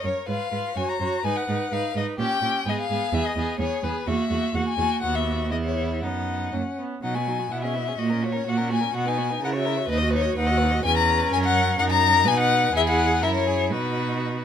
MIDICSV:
0, 0, Header, 1, 5, 480
1, 0, Start_track
1, 0, Tempo, 474684
1, 281, Time_signature, 2, 2, 24, 8
1, 5078, Tempo, 501672
1, 6998, Tempo, 475436
1, 12758, Tempo, 495458
1, 14417, End_track
2, 0, Start_track
2, 0, Title_t, "Violin"
2, 0, Program_c, 0, 40
2, 55, Note_on_c, 0, 73, 64
2, 283, Note_off_c, 0, 73, 0
2, 289, Note_on_c, 0, 77, 76
2, 772, Note_on_c, 0, 80, 71
2, 787, Note_off_c, 0, 77, 0
2, 896, Note_on_c, 0, 82, 65
2, 911, Note_off_c, 0, 80, 0
2, 1257, Note_on_c, 0, 80, 80
2, 1272, Note_off_c, 0, 82, 0
2, 1378, Note_on_c, 0, 78, 68
2, 1393, Note_off_c, 0, 80, 0
2, 1746, Note_on_c, 0, 77, 74
2, 1762, Note_off_c, 0, 78, 0
2, 1976, Note_off_c, 0, 77, 0
2, 1992, Note_on_c, 0, 75, 67
2, 2073, Note_off_c, 0, 75, 0
2, 2236, Note_on_c, 0, 79, 91
2, 2718, Note_on_c, 0, 75, 72
2, 2733, Note_off_c, 0, 79, 0
2, 2821, Note_off_c, 0, 75, 0
2, 2838, Note_on_c, 0, 77, 82
2, 3175, Note_on_c, 0, 76, 89
2, 3191, Note_off_c, 0, 77, 0
2, 3302, Note_on_c, 0, 75, 72
2, 3317, Note_off_c, 0, 76, 0
2, 3627, Note_off_c, 0, 75, 0
2, 3633, Note_on_c, 0, 73, 79
2, 3872, Note_on_c, 0, 71, 70
2, 3888, Note_off_c, 0, 73, 0
2, 4116, Note_on_c, 0, 76, 78
2, 4131, Note_off_c, 0, 71, 0
2, 4601, Note_on_c, 0, 78, 74
2, 4616, Note_off_c, 0, 76, 0
2, 4720, Note_off_c, 0, 78, 0
2, 4737, Note_on_c, 0, 80, 80
2, 5068, Note_off_c, 0, 80, 0
2, 5074, Note_on_c, 0, 78, 80
2, 5198, Note_on_c, 0, 76, 67
2, 5212, Note_off_c, 0, 78, 0
2, 5542, Note_off_c, 0, 76, 0
2, 5548, Note_on_c, 0, 75, 60
2, 5595, Note_off_c, 0, 75, 0
2, 5670, Note_on_c, 0, 73, 57
2, 6031, Note_off_c, 0, 73, 0
2, 6040, Note_on_c, 0, 78, 57
2, 6752, Note_off_c, 0, 78, 0
2, 7003, Note_on_c, 0, 78, 67
2, 7118, Note_on_c, 0, 80, 65
2, 7133, Note_off_c, 0, 78, 0
2, 7492, Note_on_c, 0, 78, 68
2, 7507, Note_off_c, 0, 80, 0
2, 7591, Note_off_c, 0, 78, 0
2, 7597, Note_on_c, 0, 76, 72
2, 7962, Note_on_c, 0, 75, 63
2, 7977, Note_off_c, 0, 76, 0
2, 8217, Note_on_c, 0, 73, 73
2, 8233, Note_off_c, 0, 75, 0
2, 8471, Note_on_c, 0, 78, 72
2, 8486, Note_off_c, 0, 73, 0
2, 8706, Note_off_c, 0, 78, 0
2, 8715, Note_on_c, 0, 80, 74
2, 8943, Note_off_c, 0, 80, 0
2, 8951, Note_on_c, 0, 78, 76
2, 9067, Note_on_c, 0, 80, 74
2, 9082, Note_off_c, 0, 78, 0
2, 9424, Note_off_c, 0, 80, 0
2, 9438, Note_on_c, 0, 78, 74
2, 9482, Note_off_c, 0, 78, 0
2, 9563, Note_on_c, 0, 76, 75
2, 9900, Note_off_c, 0, 76, 0
2, 9906, Note_on_c, 0, 75, 81
2, 10135, Note_off_c, 0, 75, 0
2, 10143, Note_on_c, 0, 73, 84
2, 10372, Note_off_c, 0, 73, 0
2, 10395, Note_on_c, 0, 78, 100
2, 10847, Note_off_c, 0, 78, 0
2, 10854, Note_on_c, 0, 80, 114
2, 10970, Note_off_c, 0, 80, 0
2, 10977, Note_on_c, 0, 82, 96
2, 11325, Note_off_c, 0, 82, 0
2, 11338, Note_on_c, 0, 80, 106
2, 11384, Note_off_c, 0, 80, 0
2, 11449, Note_on_c, 0, 78, 112
2, 11796, Note_off_c, 0, 78, 0
2, 11803, Note_on_c, 0, 78, 110
2, 11850, Note_off_c, 0, 78, 0
2, 11918, Note_on_c, 0, 82, 116
2, 12292, Note_on_c, 0, 80, 113
2, 12307, Note_off_c, 0, 82, 0
2, 12406, Note_off_c, 0, 80, 0
2, 12417, Note_on_c, 0, 78, 110
2, 12764, Note_off_c, 0, 78, 0
2, 12788, Note_on_c, 0, 76, 116
2, 12829, Note_off_c, 0, 76, 0
2, 12901, Note_on_c, 0, 78, 95
2, 13238, Note_on_c, 0, 76, 92
2, 13253, Note_off_c, 0, 78, 0
2, 13351, Note_off_c, 0, 76, 0
2, 13358, Note_on_c, 0, 73, 91
2, 13707, Note_off_c, 0, 73, 0
2, 13720, Note_on_c, 0, 71, 80
2, 14417, Note_off_c, 0, 71, 0
2, 14417, End_track
3, 0, Start_track
3, 0, Title_t, "Violin"
3, 0, Program_c, 1, 40
3, 40, Note_on_c, 1, 73, 39
3, 273, Note_off_c, 1, 73, 0
3, 279, Note_on_c, 1, 71, 47
3, 517, Note_off_c, 1, 71, 0
3, 521, Note_on_c, 1, 71, 40
3, 758, Note_off_c, 1, 71, 0
3, 764, Note_on_c, 1, 73, 49
3, 1000, Note_off_c, 1, 73, 0
3, 1012, Note_on_c, 1, 73, 42
3, 1245, Note_off_c, 1, 73, 0
3, 1253, Note_on_c, 1, 71, 50
3, 1486, Note_off_c, 1, 71, 0
3, 1491, Note_on_c, 1, 71, 47
3, 1717, Note_off_c, 1, 71, 0
3, 1723, Note_on_c, 1, 71, 50
3, 1953, Note_off_c, 1, 71, 0
3, 1959, Note_on_c, 1, 71, 45
3, 2197, Note_off_c, 1, 71, 0
3, 2211, Note_on_c, 1, 67, 61
3, 2439, Note_off_c, 1, 67, 0
3, 2445, Note_on_c, 1, 67, 51
3, 2680, Note_off_c, 1, 67, 0
3, 2686, Note_on_c, 1, 68, 55
3, 2921, Note_off_c, 1, 68, 0
3, 2928, Note_on_c, 1, 68, 50
3, 3160, Note_off_c, 1, 68, 0
3, 3179, Note_on_c, 1, 68, 62
3, 3403, Note_off_c, 1, 68, 0
3, 3418, Note_on_c, 1, 68, 56
3, 3637, Note_off_c, 1, 68, 0
3, 3643, Note_on_c, 1, 68, 54
3, 3873, Note_off_c, 1, 68, 0
3, 3878, Note_on_c, 1, 68, 50
3, 4111, Note_off_c, 1, 68, 0
3, 4130, Note_on_c, 1, 66, 55
3, 4344, Note_off_c, 1, 66, 0
3, 4350, Note_on_c, 1, 66, 50
3, 4589, Note_off_c, 1, 66, 0
3, 4598, Note_on_c, 1, 66, 52
3, 4832, Note_off_c, 1, 66, 0
3, 4838, Note_on_c, 1, 66, 43
3, 5076, Note_off_c, 1, 66, 0
3, 5099, Note_on_c, 1, 66, 47
3, 5542, Note_on_c, 1, 64, 51
3, 5557, Note_off_c, 1, 66, 0
3, 6040, Note_on_c, 1, 63, 41
3, 6054, Note_off_c, 1, 64, 0
3, 6519, Note_on_c, 1, 61, 42
3, 6533, Note_off_c, 1, 63, 0
3, 6802, Note_off_c, 1, 61, 0
3, 7007, Note_on_c, 1, 63, 42
3, 7120, Note_on_c, 1, 66, 37
3, 7135, Note_off_c, 1, 63, 0
3, 7262, Note_on_c, 1, 63, 40
3, 7278, Note_off_c, 1, 66, 0
3, 7365, Note_on_c, 1, 66, 39
3, 7380, Note_off_c, 1, 63, 0
3, 7481, Note_off_c, 1, 66, 0
3, 7487, Note_on_c, 1, 64, 45
3, 7597, Note_on_c, 1, 68, 39
3, 7612, Note_off_c, 1, 64, 0
3, 7715, Note_on_c, 1, 64, 41
3, 7730, Note_off_c, 1, 68, 0
3, 7856, Note_on_c, 1, 68, 39
3, 7871, Note_off_c, 1, 64, 0
3, 7946, Note_off_c, 1, 68, 0
3, 7952, Note_on_c, 1, 66, 43
3, 8078, Note_on_c, 1, 70, 40
3, 8093, Note_off_c, 1, 66, 0
3, 8206, Note_on_c, 1, 66, 40
3, 8221, Note_off_c, 1, 70, 0
3, 8309, Note_on_c, 1, 70, 45
3, 8324, Note_off_c, 1, 66, 0
3, 8437, Note_off_c, 1, 70, 0
3, 8443, Note_on_c, 1, 66, 50
3, 8560, Note_on_c, 1, 70, 46
3, 8575, Note_off_c, 1, 66, 0
3, 8682, Note_on_c, 1, 66, 46
3, 8697, Note_off_c, 1, 70, 0
3, 8789, Note_on_c, 1, 70, 42
3, 8804, Note_off_c, 1, 66, 0
3, 8909, Note_off_c, 1, 70, 0
3, 8915, Note_on_c, 1, 66, 53
3, 9044, Note_on_c, 1, 71, 44
3, 9059, Note_off_c, 1, 66, 0
3, 9164, Note_on_c, 1, 66, 46
3, 9179, Note_off_c, 1, 71, 0
3, 9291, Note_on_c, 1, 71, 44
3, 9306, Note_off_c, 1, 66, 0
3, 9408, Note_off_c, 1, 71, 0
3, 9414, Note_on_c, 1, 70, 60
3, 9521, Note_on_c, 1, 73, 49
3, 9536, Note_off_c, 1, 70, 0
3, 9648, Note_on_c, 1, 70, 52
3, 9663, Note_off_c, 1, 73, 0
3, 9767, Note_on_c, 1, 73, 49
3, 9782, Note_off_c, 1, 70, 0
3, 9862, Note_off_c, 1, 73, 0
3, 9869, Note_on_c, 1, 71, 62
3, 9981, Note_on_c, 1, 75, 50
3, 9996, Note_off_c, 1, 71, 0
3, 10103, Note_on_c, 1, 71, 56
3, 10118, Note_off_c, 1, 75, 0
3, 10219, Note_on_c, 1, 75, 51
3, 10234, Note_off_c, 1, 71, 0
3, 10341, Note_off_c, 1, 75, 0
3, 10347, Note_on_c, 1, 71, 59
3, 10467, Note_on_c, 1, 75, 57
3, 10482, Note_off_c, 1, 71, 0
3, 10580, Note_on_c, 1, 71, 56
3, 10595, Note_off_c, 1, 75, 0
3, 10717, Note_on_c, 1, 75, 57
3, 10732, Note_off_c, 1, 71, 0
3, 10844, Note_off_c, 1, 75, 0
3, 10857, Note_on_c, 1, 71, 67
3, 11341, Note_on_c, 1, 70, 77
3, 11356, Note_off_c, 1, 71, 0
3, 11789, Note_off_c, 1, 70, 0
3, 11795, Note_on_c, 1, 70, 71
3, 12273, Note_on_c, 1, 71, 74
3, 12288, Note_off_c, 1, 70, 0
3, 12749, Note_off_c, 1, 71, 0
3, 12755, Note_on_c, 1, 68, 79
3, 13229, Note_on_c, 1, 70, 68
3, 13243, Note_off_c, 1, 68, 0
3, 13471, Note_on_c, 1, 68, 60
3, 13485, Note_off_c, 1, 70, 0
3, 13712, Note_on_c, 1, 66, 54
3, 13726, Note_off_c, 1, 68, 0
3, 14417, Note_off_c, 1, 66, 0
3, 14417, End_track
4, 0, Start_track
4, 0, Title_t, "Viola"
4, 0, Program_c, 2, 41
4, 32, Note_on_c, 2, 70, 39
4, 273, Note_off_c, 2, 70, 0
4, 283, Note_on_c, 2, 65, 48
4, 519, Note_off_c, 2, 65, 0
4, 525, Note_on_c, 2, 65, 46
4, 760, Note_off_c, 2, 65, 0
4, 765, Note_on_c, 2, 66, 43
4, 1001, Note_off_c, 2, 66, 0
4, 1020, Note_on_c, 2, 66, 43
4, 1249, Note_off_c, 2, 66, 0
4, 1259, Note_on_c, 2, 63, 49
4, 1488, Note_off_c, 2, 63, 0
4, 1498, Note_on_c, 2, 63, 47
4, 1728, Note_off_c, 2, 63, 0
4, 1740, Note_on_c, 2, 63, 45
4, 1968, Note_off_c, 2, 63, 0
4, 1976, Note_on_c, 2, 63, 47
4, 2205, Note_off_c, 2, 63, 0
4, 2213, Note_on_c, 2, 61, 57
4, 2444, Note_off_c, 2, 61, 0
4, 2461, Note_on_c, 2, 61, 49
4, 2688, Note_off_c, 2, 61, 0
4, 2698, Note_on_c, 2, 59, 51
4, 2927, Note_off_c, 2, 59, 0
4, 2938, Note_on_c, 2, 59, 51
4, 3165, Note_off_c, 2, 59, 0
4, 3173, Note_on_c, 2, 59, 50
4, 3399, Note_off_c, 2, 59, 0
4, 3407, Note_on_c, 2, 59, 54
4, 3631, Note_off_c, 2, 59, 0
4, 3637, Note_on_c, 2, 59, 50
4, 3869, Note_off_c, 2, 59, 0
4, 3885, Note_on_c, 2, 59, 47
4, 4110, Note_off_c, 2, 59, 0
4, 4116, Note_on_c, 2, 58, 56
4, 4351, Note_off_c, 2, 58, 0
4, 4359, Note_on_c, 2, 58, 51
4, 4594, Note_off_c, 2, 58, 0
4, 4605, Note_on_c, 2, 58, 43
4, 4833, Note_off_c, 2, 58, 0
4, 4839, Note_on_c, 2, 58, 44
4, 5071, Note_off_c, 2, 58, 0
4, 5078, Note_on_c, 2, 59, 47
4, 5509, Note_off_c, 2, 59, 0
4, 5546, Note_on_c, 2, 59, 46
4, 6027, Note_off_c, 2, 59, 0
4, 6035, Note_on_c, 2, 59, 41
4, 6512, Note_off_c, 2, 59, 0
4, 6525, Note_on_c, 2, 58, 40
4, 6602, Note_off_c, 2, 58, 0
4, 6767, Note_on_c, 2, 59, 48
4, 6994, Note_off_c, 2, 59, 0
4, 7000, Note_on_c, 2, 54, 46
4, 7130, Note_on_c, 2, 59, 40
4, 7145, Note_off_c, 2, 54, 0
4, 7244, Note_on_c, 2, 54, 41
4, 7259, Note_off_c, 2, 59, 0
4, 7371, Note_on_c, 2, 59, 37
4, 7386, Note_off_c, 2, 54, 0
4, 7485, Note_off_c, 2, 59, 0
4, 7491, Note_on_c, 2, 59, 45
4, 7618, Note_on_c, 2, 61, 41
4, 7633, Note_off_c, 2, 59, 0
4, 7740, Note_on_c, 2, 59, 41
4, 7755, Note_off_c, 2, 61, 0
4, 7863, Note_on_c, 2, 61, 36
4, 7878, Note_off_c, 2, 59, 0
4, 7975, Note_off_c, 2, 61, 0
4, 7981, Note_on_c, 2, 58, 45
4, 8101, Note_on_c, 2, 61, 44
4, 8116, Note_off_c, 2, 58, 0
4, 8225, Note_on_c, 2, 58, 47
4, 8240, Note_off_c, 2, 61, 0
4, 8339, Note_on_c, 2, 61, 40
4, 8354, Note_off_c, 2, 58, 0
4, 8453, Note_off_c, 2, 61, 0
4, 8459, Note_on_c, 2, 58, 40
4, 8581, Note_on_c, 2, 61, 41
4, 8596, Note_off_c, 2, 58, 0
4, 8701, Note_on_c, 2, 58, 42
4, 8716, Note_off_c, 2, 61, 0
4, 8818, Note_on_c, 2, 61, 41
4, 8834, Note_off_c, 2, 58, 0
4, 8935, Note_off_c, 2, 61, 0
4, 8941, Note_on_c, 2, 59, 46
4, 9055, Note_on_c, 2, 63, 48
4, 9070, Note_off_c, 2, 59, 0
4, 9176, Note_on_c, 2, 59, 50
4, 9191, Note_off_c, 2, 63, 0
4, 9304, Note_on_c, 2, 63, 47
4, 9320, Note_off_c, 2, 59, 0
4, 9419, Note_off_c, 2, 63, 0
4, 9425, Note_on_c, 2, 64, 49
4, 9540, Note_on_c, 2, 66, 46
4, 9555, Note_off_c, 2, 64, 0
4, 9656, Note_on_c, 2, 64, 51
4, 9671, Note_off_c, 2, 66, 0
4, 9776, Note_on_c, 2, 66, 44
4, 9791, Note_off_c, 2, 64, 0
4, 9897, Note_off_c, 2, 66, 0
4, 9903, Note_on_c, 2, 63, 54
4, 10020, Note_on_c, 2, 66, 54
4, 10035, Note_off_c, 2, 63, 0
4, 10135, Note_on_c, 2, 63, 56
4, 10150, Note_off_c, 2, 66, 0
4, 10249, Note_on_c, 2, 66, 54
4, 10264, Note_off_c, 2, 63, 0
4, 10368, Note_off_c, 2, 66, 0
4, 10374, Note_on_c, 2, 63, 53
4, 10498, Note_on_c, 2, 66, 55
4, 10513, Note_off_c, 2, 63, 0
4, 10628, Note_on_c, 2, 63, 59
4, 10643, Note_off_c, 2, 66, 0
4, 10745, Note_on_c, 2, 66, 50
4, 10760, Note_off_c, 2, 63, 0
4, 10858, Note_off_c, 2, 66, 0
4, 10866, Note_on_c, 2, 61, 70
4, 11813, Note_on_c, 2, 63, 66
4, 11828, Note_off_c, 2, 61, 0
4, 12282, Note_off_c, 2, 63, 0
4, 12288, Note_on_c, 2, 63, 69
4, 12757, Note_off_c, 2, 63, 0
4, 12768, Note_on_c, 2, 64, 74
4, 13198, Note_off_c, 2, 64, 0
4, 13232, Note_on_c, 2, 64, 60
4, 13716, Note_on_c, 2, 63, 58
4, 13731, Note_off_c, 2, 64, 0
4, 14417, Note_off_c, 2, 63, 0
4, 14417, End_track
5, 0, Start_track
5, 0, Title_t, "Cello"
5, 0, Program_c, 3, 42
5, 42, Note_on_c, 3, 42, 44
5, 123, Note_off_c, 3, 42, 0
5, 283, Note_on_c, 3, 44, 50
5, 364, Note_off_c, 3, 44, 0
5, 522, Note_on_c, 3, 44, 43
5, 603, Note_off_c, 3, 44, 0
5, 771, Note_on_c, 3, 42, 50
5, 852, Note_off_c, 3, 42, 0
5, 1011, Note_on_c, 3, 42, 48
5, 1092, Note_off_c, 3, 42, 0
5, 1253, Note_on_c, 3, 44, 56
5, 1334, Note_off_c, 3, 44, 0
5, 1501, Note_on_c, 3, 44, 54
5, 1582, Note_off_c, 3, 44, 0
5, 1733, Note_on_c, 3, 44, 48
5, 1814, Note_off_c, 3, 44, 0
5, 1972, Note_on_c, 3, 44, 56
5, 2053, Note_off_c, 3, 44, 0
5, 2209, Note_on_c, 3, 46, 63
5, 2290, Note_off_c, 3, 46, 0
5, 2443, Note_on_c, 3, 46, 52
5, 2524, Note_off_c, 3, 46, 0
5, 2683, Note_on_c, 3, 44, 60
5, 2764, Note_off_c, 3, 44, 0
5, 2932, Note_on_c, 3, 44, 51
5, 3013, Note_off_c, 3, 44, 0
5, 3166, Note_on_c, 3, 40, 68
5, 3246, Note_off_c, 3, 40, 0
5, 3400, Note_on_c, 3, 40, 52
5, 3480, Note_off_c, 3, 40, 0
5, 3629, Note_on_c, 3, 40, 51
5, 3710, Note_off_c, 3, 40, 0
5, 3872, Note_on_c, 3, 40, 54
5, 3953, Note_off_c, 3, 40, 0
5, 4116, Note_on_c, 3, 40, 60
5, 4197, Note_off_c, 3, 40, 0
5, 4353, Note_on_c, 3, 40, 52
5, 4434, Note_off_c, 3, 40, 0
5, 4591, Note_on_c, 3, 40, 53
5, 4672, Note_off_c, 3, 40, 0
5, 4832, Note_on_c, 3, 40, 53
5, 4913, Note_off_c, 3, 40, 0
5, 5080, Note_on_c, 3, 39, 60
5, 5542, Note_on_c, 3, 40, 53
5, 5556, Note_off_c, 3, 39, 0
5, 6035, Note_on_c, 3, 42, 45
5, 6049, Note_off_c, 3, 40, 0
5, 6513, Note_off_c, 3, 42, 0
5, 6519, Note_on_c, 3, 42, 43
5, 6595, Note_off_c, 3, 42, 0
5, 6997, Note_on_c, 3, 47, 54
5, 7429, Note_off_c, 3, 47, 0
5, 7486, Note_on_c, 3, 47, 50
5, 7915, Note_off_c, 3, 47, 0
5, 7970, Note_on_c, 3, 46, 57
5, 8402, Note_off_c, 3, 46, 0
5, 8455, Note_on_c, 3, 46, 58
5, 8881, Note_off_c, 3, 46, 0
5, 8935, Note_on_c, 3, 47, 63
5, 9361, Note_off_c, 3, 47, 0
5, 9415, Note_on_c, 3, 49, 57
5, 9840, Note_off_c, 3, 49, 0
5, 9894, Note_on_c, 3, 39, 69
5, 10315, Note_off_c, 3, 39, 0
5, 10368, Note_on_c, 3, 39, 74
5, 10792, Note_off_c, 3, 39, 0
5, 10852, Note_on_c, 3, 40, 66
5, 11296, Note_off_c, 3, 40, 0
5, 11329, Note_on_c, 3, 42, 74
5, 11793, Note_off_c, 3, 42, 0
5, 11815, Note_on_c, 3, 42, 79
5, 12289, Note_on_c, 3, 47, 71
5, 12304, Note_off_c, 3, 42, 0
5, 12755, Note_off_c, 3, 47, 0
5, 12761, Note_on_c, 3, 40, 77
5, 13231, Note_on_c, 3, 42, 66
5, 13246, Note_off_c, 3, 40, 0
5, 13714, Note_on_c, 3, 47, 61
5, 13728, Note_off_c, 3, 42, 0
5, 14417, Note_off_c, 3, 47, 0
5, 14417, End_track
0, 0, End_of_file